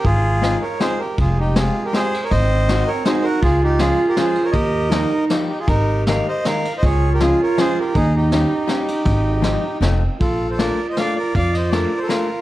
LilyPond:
<<
  \new Staff \with { instrumentName = "Accordion" } { \time 3/4 \key aes \major \tempo 4 = 160 <f' aes'>4. <bes' des''>8 <aes' c''>8 <g' bes'>8 | <f' aes'>8 <ees' g'>8 <f' aes'>8. <g' bes'>16 <aes' c''>8. <bes' des''>16 | <c'' ees''>4. <bes' des''>8 <aes' c''>8 <ges' bes'>8 | <f' aes'>8 <ees' g'>8 <f' aes'>8. <g' bes'>16 <aes' c''>8. <bes' des''>16 |
<bes' ees''>2 r8 <ees' g'>16 <f' aes'>16 | <ees' bes'>4 <bes' f''>8 <c'' ees''>8 <bes' f''>8. <c'' ees''>16 | <aes' des''>8. <g' bes'>16 <f' aes'>8 <bes' des''>8 <aes' c''>8 <g' bes'>8 | <ees' aes'>8 <ees' g'>8 <ees' g'>2~ |
<ees' g'>2 r4 | \key bes \major <f' a'>8. <a' c''>16 <bes' d''>8. <c'' ees''>16 <d'' f''>8 <bes' d''>8 | <d'' f''>8 <c'' ees''>8 <bes' d''>8. <a' c''>16 <f' bes'>4 | }
  \new Staff \with { instrumentName = "Clarinet" } { \time 3/4 \key aes \major r2. | aes2. | c'2 ees'4 | f'2. |
g'4 ees'4. r8 | g'2~ g'8 r8 | f'2. | ees'2. |
ees'2 c'4 | \key bes \major f'2.~ | f'2. | }
  \new Staff \with { instrumentName = "Hollow-body jazz guitar" } { \time 3/4 \key aes \major r4 <aes c' ees' f'>8 r8 <aes c' ees' f'>8 r8 | r4 <aes c' f' g'>8 r8 <aes c' f' g'>8 r8 | r4 <aes c' ees' ges'>8 r8 <aes c' ees' ges'>8 r8 | r4 <f aes des' f'>8 r8 <f aes des' f'>8 r8 |
r4 <f g bes ees'>8 r8 <f g bes ees'>8 r8 | r4 <ees aes bes ees'>8 r8 <ees aes bes ees'>8 r8 | r4 <f aes des' f'>8 r8 <f aes des' f'>8 r8 | r4 <g bes des' ees'>8 r8 <g bes des' ees'>8 r8 |
r4 <f aes c' ees'>8 r8 <f a c' ees'>8 r8 | \key bes \major r4 <a bes d' f'>8 r8 <a bes d' f'>8 r8 | r4 <a bes d' f'>8 r8 <a bes d' f'>8 r8 | }
  \new Staff \with { instrumentName = "Upright bass" } { \clef bass \time 3/4 \key aes \major aes,,2 r4 | f,,2 r4 | aes,,2 r4 | des,2 r4 |
ees,2 r4 | aes,,2 r4 | des,2 r4 | ees,2 r4 |
aes,,2 f,,4 | \key bes \major bes,,2 r4 | f,2 r4 | }
  \new DrumStaff \with { instrumentName = "Drums" } \drummode { \time 3/4 <bd cymr>4 <cymr sn>4 <cymr sn>4 | <bd cymr>4 <cymr sn>4 <cymr sn>8 cymr8 | <bd cymr>4 <cymr sn>4 <cymr sn>4 | <bd cymr>4 <cymr sn>4 <cymr sn>8 cymr8 |
<bd cymr>4 <cymr sn>4 <cymr sn>4 | <bd cymr>4 <cymr sn>4 <cymr sn>8 cymr8 | <bd cymr>4 <cymr sn>4 <cymr sn>4 | <bd cymr>4 <cymr sn>4 <cymr sn>8 cymr8 |
<bd cymr>4 <cymr sn>4 <cymr sn>4 | <bd cymr>4 <cymr sn>4 <cymr sn>4 | <bd cymr>8 cymr8 <cymr sn>4 <cymr sn>4 | }
>>